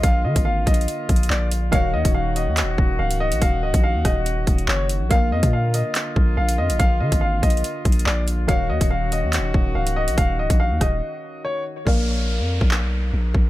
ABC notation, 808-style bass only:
X:1
M:4/4
L:1/16
Q:1/4=142
K:Ebm
V:1 name="808-style bass" clef=bass
B,,,2 =D, A,,,3 B,,,2 z2 B,,,2 B,,,4 | E,,,2 E,, E,,,4 E,,3/2 E,,,3/2 E,,,2 D,,,3 B,,, | E,,,2 D,,, B,,,2 E,, E,,,4 E,,,2 G,,,3 B,,, | B,,,2 F,, B,,4 z3 B,,,2 B,,,2 F,, B,,, |
B,,,2 =D, A,,,3 B,,,2 z2 B,,,2 B,,,4 | E,,,2 E,, E,,,4 E,,3/2 E,,,3/2 E,,,2 D,,,3 B,,, | E,,,2 D,,, B,,,2 E,, E,,,2 z8 | B,,,4- B,,, F,,2 B,,,2 C,,3 B,,,2 B,,,2 |]